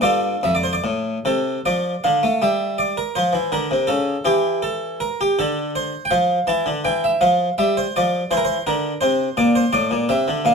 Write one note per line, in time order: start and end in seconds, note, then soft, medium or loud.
0.01 0.34 G2 soft
0.01 0.41 F4 soft
0.01 0.41 A4 soft
0.01 0.37 D5 medium
0.43 0.76 F2 soft
0.43 0.53 E5 medium
0.55 0.64 D5 medium
0.63 0.73 C5 soft
0.73 0.83 D5 soft
0.84 1.17 A2 soft
1.25 1.58 C3 soft
1.25 1.60 A4 medium
1.66 1.94 F3 soft
1.66 2.04 D5 medium
2.04 2.23 D3 soft
2.04 2.37 F5 medium
2.23 2.41 A3 soft
2.42 2.96 G3 soft
2.42 2.80 E5 medium
2.78 2.98 D5 medium
2.97 3.16 A#4 medium
3.15 3.34 F3 soft
3.15 3.52 C5 medium
3.33 3.51 E3 soft
3.52 3.70 D3 soft
3.52 3.89 A#4 medium
3.71 3.88 C3 soft
3.87 4.15 C#3 soft
3.87 4.25 A4 medium
4.25 5.05 E3 soft
4.25 4.63 G4 medium
4.62 5.00 A4 medium
5.00 5.19 A#4 medium
5.21 5.38 G4 medium
5.39 5.92 D3 soft
5.39 5.70 A4 medium
5.75 6.05 C5 medium
6.05 6.12 G5 medium
6.11 6.38 F3 soft
6.11 6.48 F5 medium
6.47 6.65 E3 soft
6.47 6.85 A5 medium
6.66 6.84 D3 soft
6.85 7.11 E3 soft
6.85 7.03 G5 medium
7.04 7.22 E5 medium
7.21 7.48 F3 soft
7.21 7.53 F5 medium
7.58 7.85 G3 soft
7.58 7.77 E5 medium
7.77 7.95 C5 medium
7.96 8.22 F3 soft
7.96 8.31 D5 medium
8.31 8.56 E3 medium
8.31 8.38 C5 medium
8.37 8.44 A#4 medium
8.45 8.63 C5 medium
8.67 8.92 D3 soft
8.67 8.96 A#4 medium
9.01 9.27 C3 medium
9.01 9.37 C5 medium
9.37 9.63 A#2 medium
9.37 9.55 D5 medium
9.55 9.73 C5 medium
9.73 9.90 A2 medium
9.73 10.03 D5 medium
9.91 10.08 A#2 soft
10.09 10.26 C3 medium
10.09 10.44 E5 medium
10.28 10.44 D3 soft
10.45 10.54 A#2 medium
10.45 10.54 F5 medium